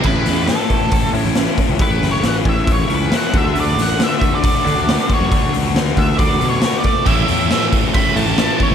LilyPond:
<<
  \new Staff \with { instrumentName = "Lead electric guitar" } { \time 4/4 \key a \major \tempo 4 = 137 b'4 a'4. r4. | \tuplet 3/2 { b'4 cis''8 } fis''8 e''8 cis''8 b'8 fis''8 e''8 | d''8 fis''8 \tuplet 3/2 { e''4 d''8~ } d''4. cis''8~ | cis''8 r4 e''8 \tuplet 3/2 { d''4 cis''8~ cis''8 d''4 } |
e''4. r8 b''8 a''4 cis''8 | }
  \new Staff \with { instrumentName = "Clean electric guitar" } { \time 4/4 \key a \major <a cis' e'>8 <a cis'>8 <a cis'>8 <a cis' e'>8 <a cis'>8 <a cis' e'>8 <a cis'>8 <a cis'>8 | <a cis' e'>8 <a cis'>8 <a cis'>8 <a cis' e'>8 <a cis'>8 <a cis' e'>8 <a cis'>8 <d a d'>8 | <d a d'>8 <d a>8 <d a>8 <d a d'>8 <d a>8 <d a d'>8 <d a>8 <d a>8 | <d a d'>8 <d a>8 <d a>8 <d a d'>8 <d a>8 <d a d'>8 <d a>8 <d a>8 |
r1 | }
  \new Staff \with { instrumentName = "Distorted electric guitar" } { \time 4/4 \key a \major r1 | r1 | r1 | r1 |
<a, e a cis' e'>2 <a, e a cis' e'>2 | }
  \new Staff \with { instrumentName = "Overdriven electric guitar" } { \time 4/4 \key a \major <a, e a cis' e'>2~ <a, e a cis' e'>8 <a, e a cis' e'>8 <a, e a cis' e'>4 | <a, e a cis' e'>2~ <a, e a cis' e'>8 <a, e a cis' e'>8 <a, e a cis' e'>8 <d a d' fis'>8~ | <d a d' fis'>2 <d a d' fis'>8 <d a d' fis'>4 <d a d' fis'>8~ | <d a d' fis'>2 <d a d' fis'>8 <d a d' fis'>4 r8 |
<a, e a cis' e'>2~ <a, e a cis' e'>8 <a, e a cis' e'>8 <a, e a cis' e'>4 | }
  \new Staff \with { instrumentName = "Fingered electric bass" } { \clef bass \time 4/4 \key a \major a,,8 e,8 r4. a,16 a,,8 r8 cis,16 | r16 a,,16 fis,,8 a,,8 a,,4 cis,8 r8 d,8~ | d,8 a,,8 r4. d16 d,8 r8 fis,16 | r16 d,16 cis,8 d,8 d,4 b,8 r4 |
a,,8 e,8 r4. a,16 a,,8 r8 cis,16 | }
  \new DrumStaff \with { instrumentName = "Drums" } \drummode { \time 4/4 <cymc bd>8 <hho sn>8 <hho sn>8 <hho bd>8 <hho bd>8 hho8 <hho sn>8 <hho bd>8 | <hho bd>8 <hho sn>8 <hho sn>8 <hho bd>8 <hho bd>8 hho8 <hho sn>8 <hho bd>8 | hho8 <hho sn>8 <hho sn>8 <hho bd>8 <hho bd>8 hho8 <hho sn>8 <hho bd>8 | <hho bd>8 hho8 <hho sn>8 <hho bd>8 <hho bd>8 hho8 <hho sn>8 <hho bd>8 |
<hho bd>8 hho8 <hho sn>8 <hho bd>8 <hho bd>8 hho8 <hho sn>8 <hho bd>8 | }
>>